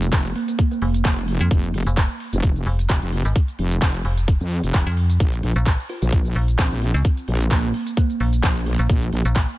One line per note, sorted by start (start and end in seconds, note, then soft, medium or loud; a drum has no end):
0.00 0.34 F1 medium
0.00 closed hi-hat medium
0.00 shaker medium
0.13 kick loud
0.13 clap loud
0.13 shaker medium
0.25 closed hi-hat soft
0.25 shaker soft
0.36 0.44 A#3 medium
0.36 open hi-hat loud
0.48 0.55 A#3 medium
0.48 closed hi-hat medium
0.48 shaker medium
0.59 kick loud
0.59 shaker medium
0.71 0.78 A#3 medium
0.71 closed hi-hat soft
0.71 shaker soft
0.82 1.03 F1 loud
0.82 0.90 A#3 medium
0.82 open hi-hat loud
0.94 closed hi-hat medium
0.94 shaker medium
1.05 1.39 F1 loud
1.05 kick loud
1.05 clap loud
1.05 shaker medium
1.17 closed hi-hat medium
1.17 shaker soft
1.28 open hi-hat loud
1.41 1.49 F2 loud
1.41 closed hi-hat medium
1.41 shaker medium
1.51 1.72 F1 loud
1.51 kick loud
1.51 shaker medium
1.64 closed hi-hat medium
1.64 shaker soft
1.74 1.85 F1 medium
1.74 open hi-hat loud
1.87 2.08 F1 loud
1.87 closed hi-hat medium
1.87 shaker medium
1.97 kick loud
1.97 clap loud
1.97 shaker medium
2.10 closed hi-hat soft
2.10 shaker soft
2.20 open hi-hat loud
2.33 2.65 F1 loud
2.33 closed hi-hat medium
2.33 shaker medium
2.43 kick loud
2.43 shaker medium
2.56 closed hi-hat soft
2.56 shaker soft
2.66 2.88 F1 loud
2.66 open hi-hat loud
2.79 closed hi-hat medium
2.79 shaker medium
2.90 3.00 F1 loud
2.90 kick loud
2.90 clap loud
2.90 shaker medium
3.02 3.23 F1 loud
3.02 closed hi-hat soft
3.02 shaker soft
3.13 open hi-hat loud
3.25 3.34 G#1 loud
3.25 closed hi-hat medium
3.25 shaker medium
3.36 kick loud
3.36 shaker medium
3.48 closed hi-hat soft
3.48 shaker soft
3.59 4.03 F1 loud
3.59 open hi-hat loud
3.71 closed hi-hat medium
3.71 shaker medium
3.82 kick loud
3.82 clap loud
3.82 shaker medium
3.94 closed hi-hat soft
3.94 shaker soft
4.05 4.39 F1 loud
4.05 open hi-hat loud
4.17 closed hi-hat medium
4.17 shaker medium
4.28 kick loud
4.28 shaker medium
4.41 4.62 F2 loud
4.41 closed hi-hat soft
4.41 shaker soft
4.51 open hi-hat loud
4.64 4.72 F1 loud
4.64 closed hi-hat medium
4.64 shaker medium
4.74 4.85 F1 medium
4.74 kick loud
4.74 clap loud
4.74 shaker medium
4.87 5.19 F2 loud
4.87 closed hi-hat soft
4.87 shaker soft
4.97 open hi-hat loud
5.10 closed hi-hat medium
5.10 shaker medium
5.20 5.42 A#1 loud
5.20 kick loud
5.20 shaker medium
5.33 closed hi-hat medium
5.33 shaker soft
5.43 5.54 A#1 loud
5.43 open hi-hat loud
5.56 5.77 A#1 loud
5.56 closed hi-hat medium
5.56 shaker medium
5.66 kick loud
5.66 clap loud
5.66 shaker medium
5.79 closed hi-hat soft
5.79 shaker soft
5.89 5.97 F4 medium
5.89 open hi-hat loud
6.02 6.34 A#1 loud
6.02 6.09 F4 medium
6.02 closed hi-hat medium
6.02 shaker medium
6.12 kick loud
6.12 shaker medium
6.25 closed hi-hat soft
6.25 shaker soft
6.36 6.57 A#1 loud
6.36 open hi-hat loud
6.48 closed hi-hat medium
6.48 shaker medium
6.59 6.69 A#1 loud
6.59 6.74 C4 medium
6.59 kick loud
6.59 clap loud
6.59 shaker medium
6.71 6.92 A#1 loud
6.71 closed hi-hat soft
6.71 shaker soft
6.82 open hi-hat loud
6.94 7.03 C#2 loud
6.94 closed hi-hat medium
6.94 shaker medium
7.05 kick loud
7.05 shaker medium
7.17 closed hi-hat medium
7.17 shaker soft
7.28 7.72 A#1 loud
7.28 open hi-hat loud
7.41 closed hi-hat medium
7.41 shaker medium
7.51 7.59 A#3 medium
7.51 kick loud
7.51 clap loud
7.51 shaker medium
7.64 7.70 A#3 medium
7.64 closed hi-hat soft
7.64 shaker soft
7.74 open hi-hat loud
7.87 closed hi-hat medium
7.87 shaker medium
7.97 8.43 A#3 loud
7.97 kick loud
7.97 shaker medium
8.10 closed hi-hat soft
8.10 shaker soft
8.20 8.42 A#1 loud
8.20 open hi-hat loud
8.33 closed hi-hat medium
8.33 shaker medium
8.43 8.77 A#1 loud
8.43 kick loud
8.43 clap loud
8.43 shaker medium
8.56 closed hi-hat medium
8.56 shaker soft
8.66 open hi-hat loud
8.79 8.88 A#1 loud
8.79 closed hi-hat medium
8.79 shaker medium
8.90 9.11 A#1 loud
8.90 kick loud
8.90 shaker medium
9.02 closed hi-hat medium
9.02 shaker soft
9.13 9.23 A#1 loud
9.13 open hi-hat loud
9.25 9.46 A#1 loud
9.25 closed hi-hat medium
9.25 shaker medium
9.36 kick loud
9.36 clap loud
9.36 shaker medium
9.48 closed hi-hat soft
9.48 shaker soft